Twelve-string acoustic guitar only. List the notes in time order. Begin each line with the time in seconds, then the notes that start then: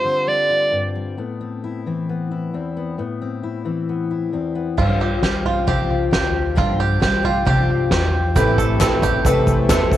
4.77 G2 D3 F3 C4 F4 G4
5.00 F3 C4 F4 G4
5.22 F3 C4 F4 G4
5.67 G2 D3 F3 C4 F4 G4
6.11 F3 C4 F4 G4
6.55 G2 D3 F3 C4 F4 G4
7.00 F3 C4 F4 G4
7.23 F3 C4 F4 G4
7.45 G2 D3 F3 C4 F4 G4
7.91 C4 F4 G4
8.36 A2 E3 A3 C4 E4 B4
8.80 A3 C4 E4 B4
9.25 A2 E3 A3 C4 E4 B4
9.69 A3 C4 E4 B4